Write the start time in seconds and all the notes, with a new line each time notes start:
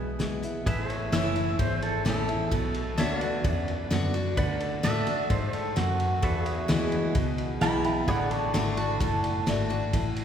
Already playing: B1 B2 G#4 B4 E5
0.19 E3 G#3 B3 E4, snare, closed hi-hat
0.43 B3 E4, closed hi-hat
0.66 A1 A2 G#4 B4 E5, kick, ride
0.86 A4, ride
0.92 C#5
1.12 F#1 E3 A3 C#4 E4 E5, snare, ride
1.35 C#4 E4, ride
1.59 G#1 E2 C5, kick, ride
1.82 A4, ride
2.05 A1 E3 A3 C#4 E4 A4, snare, ride
2.28 C#4 E4, ride
2.51 B1 B2, kick, ride
2.74 ride
2.98 D2 D3 B3 D4 F#4 A4 C#5 E5, snare, ride
3.19 F#4 B4 D5, ride
3.23 D4 F#5
3.44 E2 F#2, kick, ride
3.68 ride
3.91 F#2 D3 B3 D4 F#4, snare, ride
4.14 D4 F#4, ride
4.37 D2 D3 B4 D5 F#5, kick, ride
4.60 A4, ride
4.83 A2 D3 A3 D4 F#4 E5, snare, ride
5.06 D4 F#4, muted fingered electric bass stroke, ride
5.30 G#2 C5, kick, ride
5.53 A4, muted fingered electric bass stroke, ride
5.76 F#2 F#4, snare, ride
6.00 ride
6.22 E2 A4 B4 F#5, kick, ride
6.43 G#4, ride
6.50 E5
6.68 D2 E3 G#3 B3 E4, snare, ride
6.92 ride
7.15 C#2 B2, kick, ride
7.38 ride
7.61 B1 E3 G#3 B3 E4 G5 B5, snare, ride
7.84 B3 E4 G5 B5, ride
8.07 A1 D3 G#4 D5 F#5 B5, kick, ride
8.28 A4 A5 C#6, ride
8.54 G#1 D3 A3 D4 F#4 A5 C#6, snare, ride
8.77 D4 F#4 A5 C#6, ride
9.00 F#1 A2 A5, kick, ride
9.24 ride
9.46 G#1 D3 A3 D4 F#4, snare, ride
9.69 D4 F#4, ride
9.93 A1 A2, kick, ride
10.16 ride